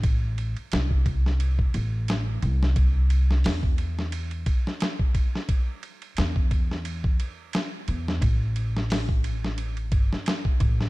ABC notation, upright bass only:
X:1
M:4/4
L:1/8
Q:"Swing 16ths" 1/4=88
K:Am
V:1 name="Upright bass" clef=bass
A,,, z C,,3 A,,,2 C,,- | C,,2 E,,3 z3 | z2 E,,3 z2 E,, | A,,,4- A,,, G,,, z A,,, |]